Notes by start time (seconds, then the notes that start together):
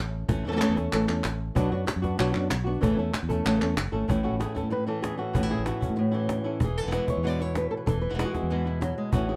Already playing: A3 C#4 E4
0.00 A1
0.28 A1 E3 A3 C#4 E4, muted nylon-string guitar stroke, cajon bass
0.45 E2 E3 A3 C#4 E4 A4
0.52 E3 A3 C#4 A4
0.56 E3 A3 C#4 A4
0.61 C#3 E3 A3 C#4 E4 A4, cajon slap, clap
0.69 E2
0.76 A3 C#4 E4 A4, cajon bass, cajon slap
0.92 A1 C#3 E3 A3 C#4 A4, muted nylon-string guitar stroke, clap
1.07 E2 A3 C#4 E4 A4, clap
1.24 A1, muted nylon-string guitar stroke, cajon slap, clap
1.55 B1 B2 F#3 B3 D4 F#4, cajon bass
1.71 F#2 B3 D4 F#4
1.87 muted nylon-string guitar stroke, cajon slap, clap
1.96 F#2
2.02 B3 D4 F#4, cajon bass, cajon slap
2.18 B1 B2 F#3 B3 D4 F#4, clap
2.33 F#2 B3 D4 F#4, clap
2.50 B1, muted nylon-string guitar stroke, cajon slap, clap
2.64 B3 D4 F#4
2.68 B3
2.81 A1 C#3 E3 A3 C#4 E4 A4, cajon bass
2.97 E2 A3 C#4 E4 A4
3.14 muted nylon-string guitar stroke, cajon slap, clap
3.23 E2
3.29 A3 C#4 E4 A4, cajon bass
3.45 A1 C#3 E3 A3 C#4 E4 A4, clap
3.61 E2 A3 C#4 E4 A4, clap
3.77 F#1, muted nylon-string guitar stroke, cajon slap, clap
3.92 G#1 A3 C#4 E4 A4
4.08 A1 A2 E3 A3 C#4 E4, cajon bass
4.23 A3 C#4 E4 F#4
4.32 A1
4.40 E3 A3 C#4 E4 G#4, cajon slap
4.55 A3 C#4 E4 A4, cajon bass, cajon slap
4.63 A2
4.70 A2 B4, muted nylon-string guitar stroke
4.87 E3 A3 C#4 E4 A4
5.02 G#4, cajon slap
5.17 A3 C#4 E4 F#4
5.33 A1 A2 E3 A3 C#4 E4, cajon bass
5.43 E4
5.49 A3 C#4 E4 G#4
5.58 A1
5.64 E3 A3 C#4 E4 F#4, cajon slap
5.80 A3 C#4 E4, cajon bass
5.90 A2
5.96 A2, muted nylon-string guitar stroke
6.11 E3 A3 C#4 E4
6.29 C#4, cajon slap
6.44 A3 C#4 E4
6.60 E1 E3 E4 G#4, muted nylon-string guitar stroke, cajon bass
6.78 A4
6.82 E3 G#3 B3 E4
6.86 E1 E3 G#3 B3 E4
6.91 B2 E3 G#3 B3 E4 B4, cajon slap
7.07 G#3 B3 E4 C#5, cajon bass
7.17 E2
7.23 B2 E3 G#3 B3 E4 D5
7.39 G#3 B3 E4 C#5
7.55 B4, muted nylon-string guitar stroke, cajon slap
7.71 A4
7.77 B4
7.86 E1 E3 A4, muted nylon-string guitar stroke, cajon bass
8.02 B4
8.10 E1 E3 G#3 B3 E4
8.14 E3 G#3 B3 E4
8.18 B2 E3 G#3 B3 E4 G#4, cajon slap
8.25 F#4
8.33 G#3 B3 E4 G#4, cajon bass, cajon slap
8.43 E2
8.50 B2 E3 G#3 B3 E4
8.65 G#3 B3 E4
8.81 F#3, muted nylon-string guitar stroke, cajon slap
8.98 G#3
9.12 A1 A2 E3 A3 C#4 E4 F#4, cajon bass
9.16 E4
9.29 A3 C#4 E4 G#4